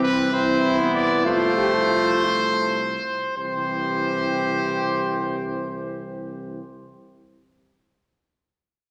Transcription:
0, 0, Header, 1, 6, 480
1, 0, Start_track
1, 0, Key_signature, 0, "major"
1, 0, Tempo, 610998
1, 984, Time_signature, 6, 3, 24, 8
1, 984, Tempo, 659341
1, 1464, Tempo, 719424
1, 4824, Tempo, 735294
1, 6102, End_track
2, 0, Start_track
2, 0, Title_t, "Trumpet"
2, 0, Program_c, 0, 56
2, 18, Note_on_c, 0, 71, 127
2, 262, Note_on_c, 0, 72, 126
2, 274, Note_off_c, 0, 71, 0
2, 732, Note_off_c, 0, 72, 0
2, 737, Note_on_c, 0, 74, 127
2, 980, Note_off_c, 0, 74, 0
2, 985, Note_on_c, 0, 72, 127
2, 2411, Note_off_c, 0, 72, 0
2, 2436, Note_on_c, 0, 72, 112
2, 4591, Note_off_c, 0, 72, 0
2, 6102, End_track
3, 0, Start_track
3, 0, Title_t, "French horn"
3, 0, Program_c, 1, 60
3, 0, Note_on_c, 1, 60, 109
3, 240, Note_off_c, 1, 60, 0
3, 253, Note_on_c, 1, 64, 127
3, 983, Note_on_c, 1, 65, 127
3, 994, Note_off_c, 1, 64, 0
3, 1213, Note_off_c, 1, 65, 0
3, 1217, Note_on_c, 1, 67, 115
3, 1328, Note_off_c, 1, 67, 0
3, 1455, Note_on_c, 1, 65, 107
3, 1690, Note_on_c, 1, 57, 92
3, 1700, Note_off_c, 1, 65, 0
3, 2060, Note_off_c, 1, 57, 0
3, 2441, Note_on_c, 1, 60, 89
3, 4596, Note_off_c, 1, 60, 0
3, 6102, End_track
4, 0, Start_track
4, 0, Title_t, "Flugelhorn"
4, 0, Program_c, 2, 56
4, 0, Note_on_c, 2, 60, 96
4, 244, Note_off_c, 2, 60, 0
4, 258, Note_on_c, 2, 60, 98
4, 616, Note_on_c, 2, 59, 105
4, 628, Note_off_c, 2, 60, 0
4, 983, Note_on_c, 2, 57, 117
4, 994, Note_off_c, 2, 59, 0
4, 2190, Note_off_c, 2, 57, 0
4, 2440, Note_on_c, 2, 67, 91
4, 4595, Note_off_c, 2, 67, 0
4, 6102, End_track
5, 0, Start_track
5, 0, Title_t, "Trombone"
5, 0, Program_c, 3, 57
5, 0, Note_on_c, 3, 52, 90
5, 253, Note_off_c, 3, 52, 0
5, 258, Note_on_c, 3, 52, 96
5, 983, Note_on_c, 3, 53, 102
5, 994, Note_off_c, 3, 52, 0
5, 2190, Note_off_c, 3, 53, 0
5, 2440, Note_on_c, 3, 52, 86
5, 4595, Note_off_c, 3, 52, 0
5, 6102, End_track
6, 0, Start_track
6, 0, Title_t, "Tuba"
6, 0, Program_c, 4, 58
6, 0, Note_on_c, 4, 36, 102
6, 2166, Note_off_c, 4, 36, 0
6, 2439, Note_on_c, 4, 36, 94
6, 4594, Note_off_c, 4, 36, 0
6, 6102, End_track
0, 0, End_of_file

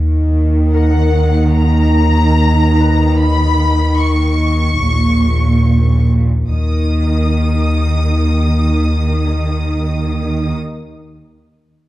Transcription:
0, 0, Header, 1, 6, 480
1, 0, Start_track
1, 0, Tempo, 815217
1, 1881, Time_signature, 4, 2, 24, 8
1, 2833, Tempo, 826446
1, 6942, End_track
2, 0, Start_track
2, 0, Title_t, "Violin section"
2, 0, Program_c, 0, 48
2, 431, Note_on_c, 0, 78, 42
2, 892, Note_off_c, 0, 78, 0
2, 917, Note_on_c, 0, 82, 55
2, 1880, Note_off_c, 0, 82, 0
2, 1882, Note_on_c, 0, 83, 68
2, 2347, Note_off_c, 0, 83, 0
2, 2356, Note_on_c, 0, 85, 58
2, 3560, Note_off_c, 0, 85, 0
2, 3812, Note_on_c, 0, 87, 41
2, 6159, Note_off_c, 0, 87, 0
2, 6942, End_track
3, 0, Start_track
3, 0, Title_t, "Harp"
3, 0, Program_c, 1, 46
3, 437, Note_on_c, 1, 70, 26
3, 1651, Note_on_c, 1, 71, 30
3, 1900, Note_off_c, 1, 70, 0
3, 3079, Note_off_c, 1, 71, 0
3, 6942, End_track
4, 0, Start_track
4, 0, Title_t, "Cello section"
4, 0, Program_c, 2, 48
4, 0, Note_on_c, 2, 51, 38
4, 2812, Note_off_c, 2, 51, 0
4, 2836, Note_on_c, 2, 46, 40
4, 3670, Note_off_c, 2, 46, 0
4, 3803, Note_on_c, 2, 51, 30
4, 6155, Note_off_c, 2, 51, 0
4, 6942, End_track
5, 0, Start_track
5, 0, Title_t, "Double bass section"
5, 0, Program_c, 3, 48
5, 0, Note_on_c, 3, 39, 38
5, 2810, Note_off_c, 3, 39, 0
5, 2834, Note_on_c, 3, 34, 34
5, 3669, Note_off_c, 3, 34, 0
5, 3802, Note_on_c, 3, 39, 31
5, 6154, Note_off_c, 3, 39, 0
5, 6942, End_track
6, 0, Start_track
6, 0, Title_t, "Sub bass"
6, 0, Program_c, 4, 38
6, 0, Note_on_c, 4, 39, 62
6, 2811, Note_off_c, 4, 39, 0
6, 2836, Note_on_c, 4, 39, 61
6, 3781, Note_off_c, 4, 39, 0
6, 3807, Note_on_c, 4, 39, 53
6, 6157, Note_off_c, 4, 39, 0
6, 6942, End_track
0, 0, End_of_file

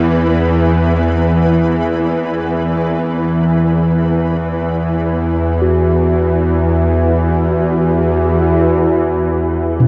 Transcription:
0, 0, Header, 1, 4, 480
1, 0, Start_track
1, 0, Tempo, 500000
1, 9484, End_track
2, 0, Start_track
2, 0, Title_t, "Synth texture"
2, 0, Program_c, 0, 99
2, 0, Note_on_c, 0, 59, 71
2, 0, Note_on_c, 0, 71, 69
2, 8355, Note_off_c, 0, 59, 0
2, 8358, Note_off_c, 0, 71, 0
2, 9484, End_track
3, 0, Start_track
3, 0, Title_t, "Singing bowl"
3, 0, Program_c, 1, 14
3, 5394, Note_on_c, 1, 66, 49
3, 9409, Note_on_c, 1, 47, 70
3, 9484, Note_off_c, 1, 47, 0
3, 9484, Note_off_c, 1, 66, 0
3, 9484, End_track
4, 0, Start_track
4, 0, Title_t, "Synth drone"
4, 0, Program_c, 2, 95
4, 0, Note_on_c, 2, 40, 66
4, 0, Note_on_c, 2, 52, 66
4, 8325, Note_off_c, 2, 52, 0
4, 8329, Note_off_c, 2, 40, 0
4, 8337, Note_on_c, 2, 52, 72
4, 8341, Note_on_c, 2, 40, 76
4, 9484, Note_off_c, 2, 40, 0
4, 9484, Note_off_c, 2, 52, 0
4, 9484, End_track
0, 0, End_of_file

